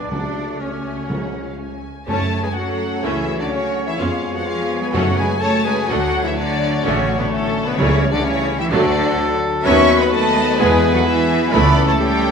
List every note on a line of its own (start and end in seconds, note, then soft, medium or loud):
0.00 0.11 B3 medium
0.00 0.10 D4 medium
0.00 0.11 G#5 medium
0.09 1.84 C#2 medium
0.09 0.81 C#3 medium
0.09 0.58 A3 medium
0.09 1.84 A3 medium
0.09 0.62 D4 medium
0.09 0.60 D4 medium
0.09 0.58 F#4 medium
0.09 0.59 D5 medium
0.09 0.60 D5 medium
0.09 0.61 F#5 medium
0.59 1.08 A3 medium
0.59 1.84 C#4 medium
0.59 1.08 F#4 medium
0.59 1.83 C#5 medium
0.59 1.81 C#5 medium
0.59 1.06 G#5 medium
1.08 1.80 C#3 loud
1.08 1.83 G#3 medium
1.08 1.83 F4 medium
1.08 1.46 F#5 medium
1.48 1.60 F5 medium
1.60 2.07 G#5 medium
2.06 2.48 F#2 medium
2.06 2.76 F#2 loud
2.06 3.96 F#3 medium
2.06 2.30 A3 medium
2.06 2.42 A3 medium
2.06 3.96 A3 medium
2.06 3.94 C#4 medium
2.06 2.30 C#4 medium
2.06 3.94 F#4 medium
2.06 2.42 A4 loud
2.06 2.41 C#5 medium
2.06 5.85 C#5 medium
2.06 2.42 A5 loud
2.43 2.56 G#3 medium
2.43 2.49 G#4 medium
2.43 2.49 B4 medium
2.43 2.56 G#5 medium
2.43 2.57 G#5 medium
2.55 3.03 F#3 medium
2.55 3.03 F#4 medium
2.55 3.02 A4 medium
2.55 3.03 F#5 medium
2.55 3.04 F#5 medium
3.03 3.43 C#2 medium
3.03 3.39 E3 medium
3.03 3.26 A3 medium
3.03 3.26 C#4 medium
3.03 3.39 E4 medium
3.03 3.39 G#4 loud
3.03 3.39 E5 loud
3.03 3.39 E5 medium
3.39 3.51 D3 medium
3.39 3.51 D4 medium
3.39 3.44 F#4 medium
3.39 3.45 D5 medium
3.39 3.51 D5 medium
3.51 3.87 C#3 medium
3.51 3.89 C#4 medium
3.51 3.86 F#4 medium
3.51 3.87 C#5 loud
3.51 3.86 C#5 medium
3.86 3.91 E3 medium
3.86 3.97 E4 medium
3.86 3.97 G#4 medium
3.86 3.92 E5 medium
3.86 3.99 E5 loud
3.98 4.38 F2 medium
3.98 4.91 F3 medium
3.98 4.33 F3 medium
3.98 4.91 G#3 medium
3.98 4.93 B3 medium
3.98 4.21 B3 medium
3.98 4.20 C#4 medium
3.98 4.33 F4 medium
3.98 4.33 G#4 medium
3.98 4.92 G#4 medium
3.98 4.33 F5 medium
3.98 4.34 F5 medium
4.34 4.46 F#3 medium
4.34 4.44 F#4 medium
4.34 4.46 A4 medium
4.34 4.40 F#5 medium
4.34 4.46 F#5 loud
4.45 4.81 F3 medium
4.45 4.80 F4 medium
4.45 4.82 G#4 medium
4.45 4.81 F5 loud
4.45 4.81 F5 medium
4.81 4.94 G#3 medium
4.81 4.87 G#4 medium
4.81 4.95 B4 medium
4.81 4.94 G#5 medium
4.81 4.87 G#5 loud
4.92 5.33 F#2 medium
4.92 5.61 F#2 loud
4.92 5.89 C#3 medium
4.92 5.17 F#3 loud
4.92 7.78 F#3 medium
4.92 8.71 A3 medium
4.92 5.16 A3 loud
4.92 5.16 C#4 medium
4.92 5.17 F#4 loud
4.92 8.72 A4 medium
4.92 5.18 A4 loud
4.92 5.17 F#5 loud
4.92 5.18 F#5 loud
5.17 5.25 G#3 loud
5.17 5.40 G#4 medium
5.17 5.40 B4 loud
5.17 5.41 G#5 loud
5.17 5.42 G#5 loud
5.40 5.65 A3 loud
5.40 5.64 A4 loud
5.40 5.65 C#5 loud
5.40 5.64 A5 loud
5.40 5.65 A5 loud
5.63 5.74 G#3 medium
5.63 5.88 G#4 loud
5.63 5.89 B4 loud
5.63 5.88 G#5 loud
5.63 5.89 G#5 loud
5.88 6.28 D2 loud
5.88 7.74 D3 medium
5.88 6.24 F#3 loud
5.88 6.12 A3 medium
5.88 6.11 D4 medium
5.88 6.23 F#4 loud
5.88 6.25 A4 loud
5.88 8.40 C#5 medium
5.88 6.24 F#5 loud
6.24 6.37 E3 loud
6.24 6.30 E4 loud
6.24 6.30 G#4 medium
6.24 6.36 E5 loud
6.24 6.37 E5 loud
6.36 6.83 D3 loud
6.36 6.85 D4 loud
6.36 6.82 F#4 loud
6.36 6.83 D5 loud
6.83 7.23 A1 loud
6.83 7.19 C#3 loud
6.83 7.06 A3 loud
6.83 7.19 C#4 loud
6.83 7.06 D4 loud
6.83 7.18 F#4 loud
6.83 7.18 C#5 loud
6.83 7.20 C#5 loud
7.19 7.31 B2 medium
7.19 7.25 B3 medium
7.19 7.31 D4 medium
7.19 7.30 B4 medium
7.19 7.31 B4 loud
7.31 7.65 A2 loud
7.31 7.67 A3 loud
7.31 7.66 C#4 loud
7.31 7.66 A4 loud
7.65 7.77 B2 medium
7.65 7.80 B3 loud
7.65 7.77 D4 medium
7.65 7.78 B4 loud
7.76 8.17 C#2 loud
7.76 8.13 C#3 loud
7.76 8.44 C#3 loud
7.76 8.72 E3 medium
7.76 8.00 G3 loud
7.76 8.70 G3 loud
7.76 8.00 A3 medium
7.76 8.12 C#4 loud
7.76 8.12 E4 loud
7.76 8.12 C#5 loud
7.76 8.13 C#5 loud
8.12 8.24 D3 loud
8.12 8.27 D4 loud
8.12 8.24 F#4 loud
8.12 8.24 D5 loud
8.24 8.59 C#3 loud
8.24 8.60 C#4 loud
8.24 8.59 E4 loud
8.24 8.60 C#5 loud
8.24 8.59 C#5 loud
8.59 8.71 E3 loud
8.59 8.73 E4 loud
8.59 8.72 G4 loud
8.59 8.71 E5 medium
8.59 8.65 E5 loud
8.71 9.11 D2 loud
8.71 9.42 D3 loud
8.71 9.65 D3 medium
8.71 10.59 F#3 loud
8.71 8.94 F#3 loud
8.71 8.93 A3 loud
8.71 9.42 D4 loud
8.71 9.48 D4 loud
8.71 9.40 F#4 loud
8.71 10.55 F#4 loud
8.71 9.67 A4 loud
8.71 9.41 D5 loud
9.65 10.04 D#2 loud
9.65 10.59 D#3 loud
9.65 9.87 F#3 loud
9.65 11.49 B3 loud
9.65 9.87 B3 loud
9.65 9.98 C#4 loud
9.65 11.54 B4 loud
9.65 10.02 C#5 loud
9.65 9.98 E5 loud
9.65 9.98 C#6 loud
10.01 10.13 B3 loud
10.01 10.14 B4 loud
10.01 10.10 D#5 medium
10.01 10.12 B5 loud
10.01 10.13 B5 loud
10.12 10.58 A3 loud
10.12 10.58 A4 loud
10.12 10.58 D#5 loud
10.12 10.58 A5 loud
10.58 10.98 E2 loud
10.58 12.31 E3 loud
10.58 10.81 G#3 loud
10.58 10.94 G#3 loud
10.58 11.36 G#3 loud
10.58 10.81 B3 loud
10.58 12.31 E4 loud
10.58 10.94 G#4 loud
10.58 10.94 B4 loud
10.58 10.93 G#5 loud
10.58 10.95 G#5 loud
10.94 11.06 F#3 loud
10.94 11.06 F#4 loud
10.94 11.06 A4 loud
10.94 11.06 F#5 loud
10.94 11.00 F#5 loud
11.06 11.52 E3 loud
11.06 11.55 E4 loud
11.06 11.53 G#4 loud
11.06 11.52 E5 loud
11.52 11.92 C#2 loud
11.52 11.75 A3 loud
11.52 12.31 A3 loud
11.52 11.88 B3 loud
11.52 12.31 C#4 loud
11.52 11.75 E4 loud
11.52 12.31 A4 loud
11.52 11.88 B4 loud
11.52 11.88 D5 loud
11.52 11.88 B5 loud
11.87 12.00 A3 loud
11.87 12.02 A4 loud
11.87 11.98 C#5 medium
11.87 11.94 A5 loud
11.87 12.01 A5 loud
11.99 12.31 G3 loud
11.99 12.31 G4 loud
11.99 12.31 C#5 loud
11.99 12.31 G5 loud